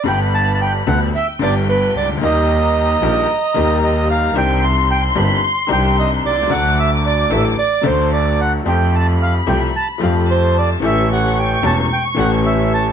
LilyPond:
<<
  \new Staff \with { instrumentName = "Violin section" } { \time 4/4 \key g \major \tempo 4 = 112 b''2 g''2 | bes''1 | c'''1 | d'''2.~ d'''8 r8 |
b''2. a''4 | cis'''1 | }
  \new Staff \with { instrumentName = "Bandoneon" } { \time 4/4 \key g \major g''8 a''16. a''32 g''8 fis''8 e''8 d''8 b'8 d''8 | ees''2. ees''8 f''8 | g''8 c'''8 g''8 b''8 c'''8 g''8 ees''8 d''8 | fis''8 e''8 d''8 e''8 d''8 c''8 d''8 fis''8 |
g''8 a''8 f''8 g''8 a''8 f''8 c''8 d''8 | e''8 fis''8 g''8 a''8 g''8 fis''8 e''8 a''8 | }
  \new Staff \with { instrumentName = "Bandoneon" } { \time 4/4 \key g \major <b d' g'>4. <b d' g'>8 r8 <b d' g'>4. | <bes ees' g'>4. <bes ees' g'>8 r8 <bes ees' g'>4. | <c' d'>4. <c' d' ees'>8 r8 <c' d'>4. | <a d' fis'>4. <a d' fis'>8 r8 <a d' fis'>4. |
<a f' g'>4. <a f' g'>8 r8 <a f' g'>4. | <a cis' g'>4. <a cis' g'>8 r8 <a cis' g'>4. | }
  \new Staff \with { instrumentName = "Upright piano" } { \clef bass \time 4/4 \key g \major << { <g,, g, d g b g'>4. <d, d g b g'>8 r8 <g,, g, d g b g'>4. | <ees, ees g bes g'>4. <bes,, bes, ees g bes g'>8 r8 <ees, ees g bes g'>4. | <c, c ees c' d' g'>4. <g,, g, ees c' d' g'>8 r8 <c, c ees c' d' g'>4. | <d, d fis a d' a'>4. <a,, a, fis a d' a'>8 r8 <d, d fis a d' a'>4. |
<f, f a c' g'>4. <c, c f a c' g'>8 r8 <f, f a c' g'>4. | <a,, a, e a cis' g'>4. <e,, e, e a cis' g'>8 r8 <a,, a, e a cis' g'>4. | } \\ { r2. r8 r32 c,32 cis,32 d,32 | r1 | r2. r8 r32 b,,32 c,32 cis,32 | r1 |
r1 | r1 | } >> }
  \new Staff \with { instrumentName = "Double bass" } { \clef bass \time 4/4 \key g \major g,,4. d,8 r8 g,,4 cis,8 | ees,4. bes,,8 r8 ees,4. | c,4. g,,8 r8 c,4 c,8 | d,4. a,,8 r8 d,4. |
f,4. c,8 r8 f,4. | a,,4. e,,8 r8 a,,4. | }
>>